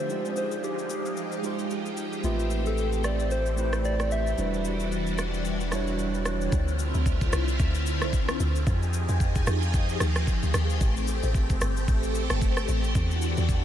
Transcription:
0.00 0.11 A3 medium
0.00 0.11 D4 medium
0.00 0.11 E4 medium
0.00 0.10 F4 medium
0.00 0.11 G4 medium
0.00 0.33 C5 loud
0.08 2.22 F3 medium
0.08 0.95 G#3 medium
0.08 2.22 G#3 medium
0.08 0.96 D#4 medium
0.08 2.22 D#4 medium
0.08 0.96 F4 medium
0.08 4.34 G4 medium
0.08 0.97 G4 medium
0.08 0.97 C5 medium
0.08 shaker medium
0.25 shaker soft
0.36 0.62 C5 loud
0.36 shaker medium
0.52 shaker medium
0.64 0.89 G4 medium
0.64 shaker medium
0.79 shaker soft
0.90 1.67 G4 medium
0.90 shaker loud
1.06 shaker medium
1.17 shaker medium
1.32 shaker medium
1.42 2.09 G#3 medium
1.42 2.09 D#4 medium
1.42 2.10 F4 medium
1.42 2.10 G4 medium
1.42 2.11 C5 medium
1.42 shaker medium
1.59 shaker soft
1.70 shaker medium
1.86 shaker soft
1.97 shaker medium
2.13 shaker medium
2.22 4.34 A1 medium
2.22 3.10 A3 medium
2.22 4.36 A3 medium
2.22 2.31 B3 medium
2.22 4.36 C4 medium
2.22 2.64 F4 medium
2.22 3.11 G4 medium
2.22 3.12 B4 medium
2.22 3.11 E5 medium
2.22 shaker medium
2.30 3.13 C4 medium
2.40 shaker medium
2.50 shaker medium
2.66 3.02 A4 medium
2.66 shaker medium
2.78 shaker medium
2.93 shaker medium
3.04 3.30 D5 medium
3.04 cross-stick medium
3.04 shaker loud
3.20 shaker medium
3.31 3.56 C5 loud
3.31 shaker medium
3.46 shaker medium
3.56 4.23 A3 medium
3.56 4.24 C4 medium
3.56 4.24 E4 medium
3.56 4.24 G4 medium
3.56 4.25 B4 medium
3.56 3.87 C5 loud
3.56 shaker loud
3.73 cross-stick medium
3.73 shaker soft
3.85 4.14 D5 loud
3.85 shaker medium
4.00 cross-stick medium
4.00 shaker soft
4.11 4.65 E5 loud
4.11 shaker medium
4.27 shaker medium
4.36 6.48 E1 medium
4.36 6.50 E3 medium
4.36 5.24 G3 medium
4.36 6.50 G3 medium
4.36 5.24 D4 medium
4.36 6.50 D4 medium
4.36 5.25 E4 medium
4.36 6.50 F#4 medium
4.36 5.25 F#4 medium
4.36 5.26 B4 medium
4.36 shaker medium
4.54 shaker soft
4.65 shaker medium
4.80 shaker medium
4.92 shaker medium
5.07 shaker soft
5.18 cross-stick medium
5.18 shaker loud
5.34 shaker medium
5.45 shaker medium
5.60 shaker medium
5.70 6.37 G3 medium
5.70 6.38 D4 medium
5.70 6.38 E4 medium
5.70 6.39 F#4 medium
5.70 6.39 C#5 loud
5.70 cross-stick medium
5.70 shaker medium
5.87 shaker soft
5.99 shaker medium
6.14 shaker soft
6.25 cross-stick loud
6.25 shaker medium
6.41 shaker medium
6.52 6.93 D2 loud
6.52 8.65 D3 medium
6.52 8.64 C4 medium
6.52 8.65 E4 medium
6.52 8.64 F4 medium
6.52 kick loud
6.52 shaker medium
6.68 shaker medium
6.79 shaker loud
6.94 7.31 D2 loud
6.94 shaker medium
7.06 kick loud
7.06 shaker medium
7.21 kick loud
7.21 shaker medium
7.33 7.58 C2 loud
7.33 cross-stick loud
7.33 shaker loud
7.48 shaker medium
7.59 8.03 D2 loud
7.59 kick loud
7.59 shaker medium
7.75 shaker medium
7.86 shaker loud
8.02 8.38 C2 medium
8.02 cross-stick medium
8.02 shaker medium
8.13 kick loud
8.13 shaker medium
8.29 cross-stick loud
8.29 shaker soft
8.40 8.65 D2 medium
8.40 shaker loud
8.56 shaker medium
8.67 9.07 F2 loud
8.67 10.79 F3 medium
8.67 10.79 D#4 medium
8.67 13.65 G4 medium
8.67 10.79 G#4 medium
8.67 kick loud
8.67 shaker medium
8.83 shaker medium
8.94 shaker loud
9.09 9.45 F2 loud
9.09 shaker medium
9.20 kick medium
9.20 shaker medium
9.35 kick loud
9.35 shaker medium
9.47 9.98 F2 loud
9.47 cross-stick loud
9.47 shaker loud
9.63 shaker medium
9.74 kick loud
9.74 shaker medium
9.89 shaker medium
10.00 10.26 D#2 loud
10.00 cross-stick loud
10.00 shaker loud
10.16 cross-stick medium
10.16 shaker medium
10.27 kick loud
10.27 shaker medium
10.43 10.54 D2 medium
10.43 shaker soft
10.54 10.80 D#2 medium
10.54 cross-stick loud
10.54 shaker medium
10.70 shaker medium
10.81 11.21 A1 loud
10.81 12.93 A3 medium
10.81 12.93 C4 medium
10.81 kick loud
10.81 shaker medium
10.97 shaker medium
11.08 shaker medium
11.23 11.60 A1 loud
11.23 shaker medium
11.34 kick loud
11.34 shaker medium
11.50 kick loud
11.50 shaker medium
11.61 11.87 G1 medium
11.61 cross-stick loud
11.61 shaker loud
11.77 shaker medium
11.88 12.29 A1 loud
11.88 kick loud
11.88 shaker medium
12.03 shaker medium
12.15 shaker loud
12.30 12.67 G1 medium
12.30 cross-stick loud
12.30 shaker medium
12.41 kick loud
12.41 shaker medium
12.57 cross-stick medium
12.57 shaker soft
12.68 12.94 A1 loud
12.68 shaker medium
12.84 shaker medium
12.95 13.36 E2 loud
12.95 13.65 E3 medium
12.95 13.65 D4 medium
12.95 13.65 F#4 medium
12.95 kick loud
12.95 shaker medium
13.11 shaker medium
13.22 shaker loud
13.37 13.65 E2 loud
13.37 shaker medium
13.49 kick loud
13.49 shaker medium

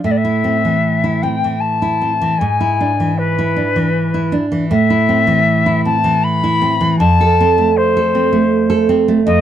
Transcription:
0.03 2.35 A2 medium
0.03 0.12 E5 medium
0.11 0.18 D5 medium
0.17 1.24 E5 medium
0.25 0.56 E4 soft
0.44 0.76 C4 soft
0.65 1.27 E3 soft
1.04 1.34 E4 soft
1.22 1.54 C4 soft
1.22 1.62 G5 medium
1.44 2.05 E3 soft
1.60 2.40 A5 medium
1.82 2.12 E4 soft
2.02 2.32 C4 soft
2.21 2.40 E3 soft
2.38 4.69 G#2 medium
2.38 3.19 G#5 medium
2.60 2.91 E4 soft
2.81 3.11 D4 soft
3.00 3.61 E3 soft
3.18 4.34 B4 medium
3.39 3.69 E4 soft
3.56 3.87 D4 soft
3.76 4.38 E3 soft
4.14 4.45 E4 soft
4.32 4.63 D4 medium
4.52 4.71 E3 soft
4.71 6.96 A2 medium
4.71 5.81 E5 medium
4.90 5.21 E4 soft
5.09 5.39 C4 soft
5.27 5.88 E3 soft
5.66 5.97 E4 soft
5.85 6.16 C4 medium
5.85 6.25 A5 medium
6.04 6.66 E3 soft
6.23 6.98 B5 medium
6.44 6.74 E4 soft
6.62 6.92 C4 medium
6.81 7.00 E3 medium
6.99 9.22 F2 medium
6.99 7.78 A5 loud
7.21 7.51 A4 medium
7.40 7.70 C4 medium
7.58 8.17 A3 medium
7.77 8.88 C5 medium
7.97 8.25 A4 medium
8.15 8.44 C4 medium
8.33 8.92 A3 medium
8.70 9.00 A4 medium
8.89 9.19 C4 medium
9.08 9.27 A3 medium
9.25 9.41 F2 medium
9.25 9.41 D#5 loud

